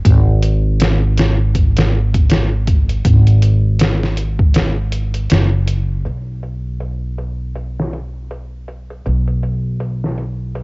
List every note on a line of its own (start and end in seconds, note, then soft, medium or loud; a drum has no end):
0.05 3.03 G#1 loud
0.05 kick loud
0.05 closed hi-hat medium
0.42 closed hi-hat medium
0.80 snare loud
0.80 closed hi-hat medium
1.17 snare loud
1.17 closed hi-hat medium
1.55 kick medium
1.55 closed hi-hat medium
1.77 snare loud
1.77 closed hi-hat medium
2.14 kick medium
2.14 closed hi-hat medium
2.30 snare loud
2.30 closed hi-hat medium
2.67 kick medium
2.67 closed hi-hat medium
2.89 closed hi-hat soft
3.05 5.31 G#1 loud
3.05 kick loud
3.05 closed hi-hat medium
3.27 closed hi-hat soft
3.42 closed hi-hat medium
3.80 snare loud
3.80 closed hi-hat medium
4.03 snare soft
4.17 closed hi-hat medium
4.39 kick loud
4.54 snare loud
4.54 closed hi-hat medium
4.92 closed hi-hat medium
5.14 closed hi-hat soft
5.30 6.03 F#1 medium
5.30 snare loud
5.30 closed hi-hat medium
5.68 closed hi-hat medium
6.05 9.03 B1 medium
6.05 closed hi-hat medium
6.43 closed hi-hat medium
6.81 closed hi-hat medium
7.18 closed hi-hat medium
7.55 closed hi-hat medium
7.80 snare soft
7.93 closed hi-hat medium
8.31 closed hi-hat medium
8.68 closed hi-hat medium
8.90 closed hi-hat soft
9.06 10.63 B1 medium
9.06 closed hi-hat medium
9.28 closed hi-hat soft
9.43 closed hi-hat medium
9.80 closed hi-hat medium
10.04 snare soft
10.18 closed hi-hat medium
10.55 closed hi-hat medium